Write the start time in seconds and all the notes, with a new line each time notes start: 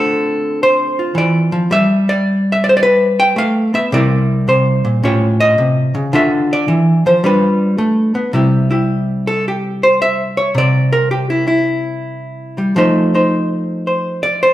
Already playing: D3 A3 C4 F4 A4
0.63 C5
0.99 F4
1.15 E3 D5
1.52 F3
1.71 G3 E5
2.09 D5
2.52 E5
2.64 D5
2.69 C5
2.77 D5
2.83 B4
3.20 G5
3.36 A3 F5
3.74 B3 E5
3.92 C3 G3 E4 A#4 D5
4.48 C3 C5
4.85 A#2
5.03 A2 C#4 F4 G4 C#5
5.40 D#5
5.58 C3
5.95 C#3
6.13 D3 D4 F4 A4 E5
6.53 D5
6.68 E3
7.06 F3 C5
7.24 G3 D4 F4 B4
7.78 A3
8.15 B3
8.33 C3 G3 E4 G4
8.71 E4 G4
9.27 A4
9.48 G4
9.83 C5
10.02 E5
10.37 C#5
10.55 C3 D5
10.93 A#4
11.11 G4
11.30 E4
11.48 E4
12.58 G3
12.76 F3 A3 D#4 C5
13.15 D#4 C5
13.87 C5
14.23 D5
14.43 C5